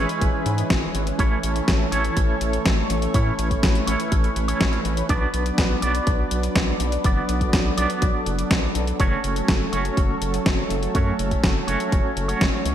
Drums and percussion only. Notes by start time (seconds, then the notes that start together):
0.09 closed hi-hat
0.21 kick, closed hi-hat
0.46 closed hi-hat
0.58 closed hi-hat
0.70 kick, snare, closed hi-hat
0.95 closed hi-hat
1.07 closed hi-hat
1.19 kick, closed hi-hat
1.43 closed hi-hat
1.56 closed hi-hat
1.68 kick, snare, closed hi-hat
1.92 closed hi-hat
2.04 closed hi-hat
2.17 kick, closed hi-hat
2.41 closed hi-hat
2.53 closed hi-hat
2.66 kick, snare, closed hi-hat
2.90 closed hi-hat
3.02 closed hi-hat
3.14 kick, closed hi-hat
3.39 closed hi-hat
3.51 kick, closed hi-hat
3.63 kick, snare, closed hi-hat
3.75 closed hi-hat
3.87 closed hi-hat
4.00 closed hi-hat
4.12 kick, closed hi-hat
4.24 closed hi-hat
4.36 closed hi-hat
4.48 closed hi-hat
4.61 kick, snare, closed hi-hat
4.73 closed hi-hat
4.85 closed hi-hat
4.97 closed hi-hat
5.09 kick, closed hi-hat
5.34 closed hi-hat
5.46 closed hi-hat
5.58 kick, snare, closed hi-hat
5.82 closed hi-hat
5.95 closed hi-hat
6.07 kick, closed hi-hat
6.31 closed hi-hat
6.43 closed hi-hat
6.56 kick, snare, closed hi-hat
6.80 closed hi-hat
6.92 closed hi-hat
7.04 kick, closed hi-hat
7.29 closed hi-hat
7.41 kick, closed hi-hat
7.53 kick, snare, closed hi-hat
7.78 closed hi-hat
7.90 closed hi-hat
8.02 kick, closed hi-hat
8.26 closed hi-hat
8.39 closed hi-hat
8.51 kick, snare, closed hi-hat
8.75 closed hi-hat
8.87 closed hi-hat
9.00 kick, closed hi-hat
9.24 closed hi-hat
9.36 closed hi-hat
9.48 kick, snare, closed hi-hat
9.73 closed hi-hat
9.85 closed hi-hat
9.97 kick, closed hi-hat
10.22 closed hi-hat
10.34 closed hi-hat
10.46 kick, snare, closed hi-hat
10.70 closed hi-hat
10.83 closed hi-hat
10.95 kick, closed hi-hat
11.19 closed hi-hat
11.31 kick, closed hi-hat
11.44 kick, snare, closed hi-hat
11.68 closed hi-hat
11.80 closed hi-hat
11.92 kick, closed hi-hat
12.17 closed hi-hat
12.29 closed hi-hat
12.41 kick, snare, closed hi-hat
12.66 closed hi-hat